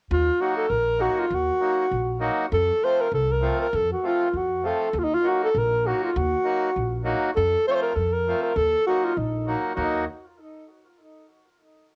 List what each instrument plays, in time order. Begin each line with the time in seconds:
0.11 upright bass D#2, alto saxophone F4
0.39 accordion F#3 A#3 D#4 F#4, alto saxophone F#4
0.57 alto saxophone A4
0.70 upright bass A#1, alto saxophone A#4
0.98 accordion F#3 A#3 D#4 F#4, alto saxophone F#4
1.19 alto saxophone F4
1.30 upright bass D#2
1.34 alto saxophone F#4
1.60 accordion F#3 A#3 D#4 F#4
1.91 upright bass A#1
2.19 accordion F#3 A#3 D#4 F#4
2.52 upright bass F2, alto saxophone A4
2.82 accordion F3 A3 C4 F4, alto saxophone C5
3.01 alto saxophone A#4
3.12 upright bass C2, alto saxophone A4
3.32 alto saxophone A#4
3.41 accordion F3 A3 C4 F4
3.61 alto saxophone A#4
3.73 upright bass F2, alto saxophone A4
3.92 alto saxophone F#4
4.03 accordion F3 A3 C4 F4, alto saxophone F4
4.33 upright bass F2, alto saxophone F#4
4.63 accordion F3 A3 C4 F4, alto saxophone A4
4.93 upright bass D#2
4.99 alto saxophone F4
5.04 alto saxophone D#4
5.14 alto saxophone F4
5.23 accordion F#3 A#3 D#4 F#4
5.28 alto saxophone F#4
5.44 alto saxophone A4
5.55 upright bass A#1, alto saxophone A#4
5.84 accordion F#3 A#3 D#4 F#4, alto saxophone F#4
6.04 alto saxophone F4
6.16 upright bass D#2, alto saxophone F#4
6.44 accordion F#3 A#3 D#4 F#4
6.76 upright bass A#1
7.03 accordion F#3 A#3 D#4 F#4
7.36 upright bass F2, alto saxophone A4
7.67 accordion F3 A3 C4 F4, alto saxophone C5
7.72 alto saxophone C5 C#5
7.82 alto saxophone A#4
7.95 upright bass F2, alto saxophone A4
8.13 alto saxophone A#4
8.26 accordion F3 A3 C4 F4
8.43 alto saxophone A#4
8.56 upright bass D#2, alto saxophone A4
8.87 accordion F#3 A#3 D#4 F#4, alto saxophone F#4
9.04 alto saxophone F4
9.17 upright bass A#1, alto saxophone D#4
9.46 accordion F#3 A#3 D#4 F#4
9.75 upright bass D#2, accordion F#3 A#3 D#4 F#4, alto saxophone D#4